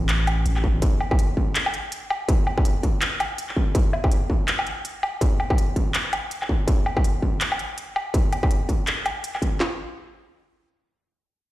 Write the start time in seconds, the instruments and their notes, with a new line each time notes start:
Already playing: 808-style bass A1
0.09 clap, closed hi-hat
0.27 closed hi-hat, low woodblock
0.46 808-style bass A1, closed hi-hat
0.56 clap, low woodblock
0.64 kick
0.82 kick, closed hi-hat
1.01 low woodblock
1.11 kick, low woodblock
1.19 closed hi-hat
1.37 kick
1.55 clap, closed hi-hat
1.66 low woodblock
1.74 closed hi-hat
1.92 closed hi-hat
2.10 low woodblock
2.29 kick, closed hi-hat
2.47 low woodblock
2.58 kick, low woodblock
2.65 closed hi-hat
2.83 kick, closed hi-hat
3.02 clap, closed hi-hat
3.20 closed hi-hat, low woodblock
3.38 closed hi-hat
3.49 clap
3.57 kick
3.75 kick, closed hi-hat
3.93 low woodblock
4.04 kick, low woodblock
4.12 closed hi-hat
4.30 kick
4.48 clap, closed hi-hat
4.59 low woodblock
4.67 closed hi-hat
4.85 closed hi-hat
5.03 low woodblock
5.21 kick, closed hi-hat
5.40 low woodblock
5.50 kick, low woodblock
5.58 closed hi-hat
5.76 kick, closed hi-hat
5.94 clap, closed hi-hat
6.13 closed hi-hat, low woodblock
6.31 closed hi-hat
6.42 clap, low woodblock
6.49 kick
6.68 kick, closed hi-hat
6.86 low woodblock
6.97 kick, low woodblock
7.04 closed hi-hat
7.22 kick
7.41 clap, closed hi-hat
7.52 low woodblock
7.59 closed hi-hat
7.78 closed hi-hat
7.96 low woodblock
8.14 kick, closed hi-hat
8.33 closed hi-hat, low woodblock
8.43 kick, low woodblock
8.51 closed hi-hat
8.69 kick, closed hi-hat
8.87 clap, closed hi-hat
9.06 closed hi-hat, low woodblock
9.24 closed hi-hat
9.35 clap, low woodblock
9.42 kick, closed hi-hat
9.60 snare, clap